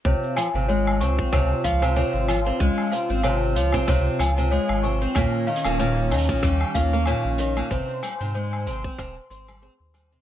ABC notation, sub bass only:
X:1
M:4/4
L:1/16
Q:"Swing 16ths" 1/4=94
K:Dblyd
V:1 name="Sub bass" clef=bass
D,, z2 A,,,3 D,, z D,, z D,,2 z A,,,2 z | D,, z2 A,,,3 D,, z D,, z D,,2 z A,,,2 z | E,, z2 E,,,3 E,, z E,, z E,,2 z B,,,2 z | A,,, z2 A,,3 A,,, z E,,, z A,,,2 z E,,2 z |]